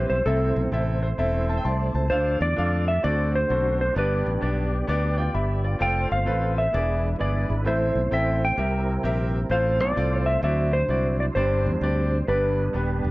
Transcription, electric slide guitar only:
0.10 0.25 C5 medium
0.26 0.69 A4 medium
2.10 2.41 C5 medium
2.42 2.85 D5 medium
2.88 3.03 E5 loud
3.04 3.35 D5 medium
3.35 3.80 C5 medium
3.81 3.97 C5 medium
3.99 4.40 B4 medium
5.82 6.09 G5 medium
6.12 6.58 F5 medium
6.58 7.16 E5 medium
7.21 7.68 D5 medium
7.67 8.14 C5 medium
8.14 8.44 E5 medium
8.45 9.32 G5 medium
9.51 9.79 C5 medium
9.81 10.29 D5 medium
10.26 10.43 E5 loud
10.44 10.74 E5 medium
10.73 11.16 C5 medium
11.20 11.25 D5 medium
11.35 12.28 C5 medium
12.28 13.01 B4 medium

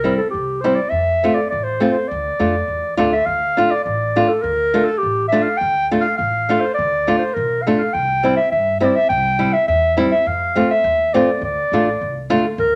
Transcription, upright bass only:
0.34 0.69 C2 medium
0.92 1.27 F2 medium
1.52 1.87 A1 medium
2.11 2.28 D2 medium
2.39 2.66 F2 medium
2.68 2.94 E2 medium
2.99 3.25 D2 medium
3.26 3.62 D2 medium
3.86 4.21 A1 medium
4.44 4.79 D2 medium
5.03 5.38 A1 medium
5.61 5.96 D2 medium
6.19 6.54 A1 medium
6.79 7.13 D2 medium
7.36 7.71 B1 medium
7.94 8.29 C2 medium
8.52 8.87 G2 medium
9.10 9.45 C2 loud
9.68 10.03 E2 medium
10.26 10.61 F2 medium
10.84 11.19 D#2 medium
11.41 11.59 D2 medium
11.72 11.98 A1 medium
12.01 12.27 C2 medium
12.30 12.56 D2 medium
12.58 12.75 D2 medium

